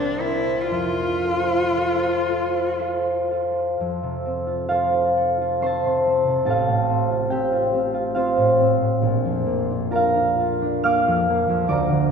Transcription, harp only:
Already playing: C2 A#4 G5
0.19 A#4 C5 G5
0.71 F2
1.24 A4 C5 F5
1.77 A4 C5 F5
2.29 A4 C5 F5
2.79 A4 C5 F5
3.31 A4 C5 F5
3.80 F2
4.03 C3
4.26 C4
4.47 F4
4.69 F4 A4 C5 F5
4.94 F4
5.17 A4
5.41 F4
5.61 C4 C5 C6
5.66 A5
5.85 C3
6.07 C4
6.27 C3
6.45 A1 A4 A5
6.50 F5
6.68 A2
6.90 C4
7.10 F4
7.30 C4 G4 G5
7.53 F4
7.74 C4
7.94 F4
8.15 C4 F4 C5 F5
8.38 A2
8.60 C4
8.81 A2
9.02 A#1
9.25 F2
9.46 A#3
9.70 D4
9.91 F4 A#4 A#5
9.96 F5
10.16 D4
10.40 F4
10.62 D4
10.84 A#3 F5 D6 F6
11.08 F2
11.29 A#3
11.49 F2
11.68 D2 D5 A#5 D6
11.89 D3

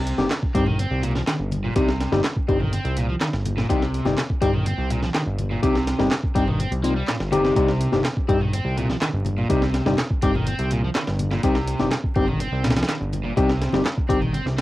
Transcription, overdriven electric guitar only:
Already playing: C3
0.55 C4
0.67 D#3
0.79 C4
1.03 A#2
1.15 F3
1.28 D#3
1.64 A#2
1.76 C3
2.49 C4
2.60 D#3
2.73 C4
2.97 A#2
3.09 F3
3.21 D#3
3.57 A#2
3.69 C3
4.42 C4
4.54 D#3
4.66 C4
4.90 A#2
5.02 F3
5.14 D#3
5.50 A#2
5.63 C3
6.36 C4
6.47 D#3
6.59 C4
6.83 A#3
6.96 G3
7.08 A#2
7.32 C3
7.44 C3
7.56 C3
8.29 C4
8.41 D#3
8.53 C4
8.77 A#2
8.90 F3
9.02 D#3
9.38 A#2
9.50 C3
10.23 C4
10.35 D#3
10.47 C4
10.72 A#2
10.84 F3
10.95 D#3
11.32 A#2
11.44 C3
12.16 C4
12.28 D#3
12.40 C4
12.64 A#2
12.76 F3
12.89 D#3
13.25 A#2
13.37 C3
14.09 C4
14.21 D#3
14.33 C4
14.58 G3

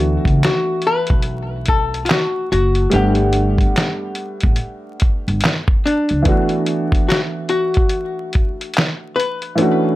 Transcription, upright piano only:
Already playing: E3 A3 B3 D4 F#4
2.90 G3 A3 B3
2.94 D4 F#5
6.23 E3 A3 B3
6.27 D4 F#4
9.56 E3 A3 C#4
9.60 D4 F#4

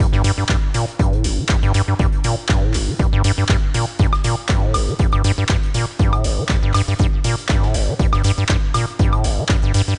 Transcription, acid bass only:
0.13 G2
0.24 G2
0.38 G2
0.49 G2
0.74 A#2
0.99 G2
1.13 A2
1.25 G1
1.38 G3
1.49 G2
1.63 G2
1.74 G2
1.88 G2
1.99 G2
2.25 A#2
2.49 G2
2.63 A2
2.74 G1
2.88 G3
2.99 G2
3.13 G2
3.24 G2
3.38 G2
3.49 G2
3.75 A#2
4.00 G2
4.24 A#2
4.49 G2
4.63 A2
4.74 G1
4.88 G3
5.00 G2
5.13 G2
5.24 G2
5.38 G2
5.49 G2
5.74 A#2
5.99 G2
6.13 A2
6.25 G1
6.38 G3
6.49 G2
6.63 G2
6.74 G2
6.88 G2
7.00 G2
7.24 A#2
7.49 G2
7.63 A2
7.74 G1
7.88 G3
7.99 G2
8.13 G2
8.24 G2
8.38 G2
8.49 G2
8.75 A#2
9.00 G2
9.13 A2
9.24 G1
9.38 G3
9.49 G2
9.63 G2
9.74 G2
9.88 G2

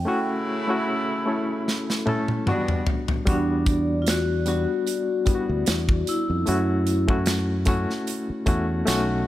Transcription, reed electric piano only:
0.05 A3 C#4 E4 F#4
0.68 A3 C#4 E4 F#4
1.26 A3 C#4 E4 A4
2.06 A3 C#4 E4 A4
2.46 E2 F#3 B3 D4 F#4
2.53 G3
3.26 G3 B3 D4 F#4
4.46 G3 B3 D4 F#4
5.26 G3 B3 D4 E4
5.35 F#4
6.46 A3 C#4 E4 F#4
7.08 A3 C#4 E4 F#4
7.66 A3 C#4 E4 F#4
8.46 A3 C#4 E4 F#4
8.86 A3 C#4 D#4 F#4 D#5
9.09 F#5

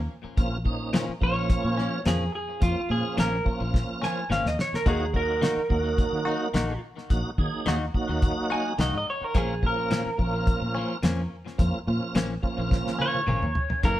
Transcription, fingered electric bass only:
0.24 muted fingered electric bass stroke
0.38 A#1
1.09 muted fingered electric bass stroke
1.22 A#1
1.64 A#2
2.06 F2
2.62 F2
2.90 A#2
3.18 A#1
3.61 A#1
4.30 G#1
4.45 D#2
4.73 muted fingered electric bass stroke
4.86 D#2
5.57 muted fingered electric bass stroke
5.70 D#2
6.13 D#3
6.54 A#1
7.10 A#1
7.38 D#3
7.67 D#2
8.09 D#2
8.79 C2
8.93 G#2
9.21 muted fingered electric bass stroke
9.35 A#1
10.06 muted fingered electric bass stroke
10.19 A#1
10.62 A#2
11.03 F2
11.59 F2
11.87 A#2
12.15 A#1
12.43 muted fingered electric bass stroke
12.58 A#1
13.27 G#1
13.42 D#2
13.70 muted fingered electric bass stroke
13.83 F#1

